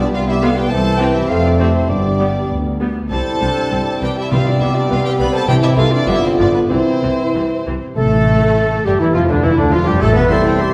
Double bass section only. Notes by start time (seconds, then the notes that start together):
0.13 C2
0.70 C2
1.29 F1
1.89 G1
2.50 D2
3.11 C2
3.41 C2
3.71 C2
4.02 C2
4.32 C2
4.60 C2
4.89 C2
5.18 C2
5.47 C2
5.77 C2
6.08 G1
6.38 G1
6.71 C2
7.04 C2
7.35 C2
7.67 C2
7.98 A1
8.86 G1
9.15 F1
9.44 E1
9.73 F1
10.01 A1
10.30 C2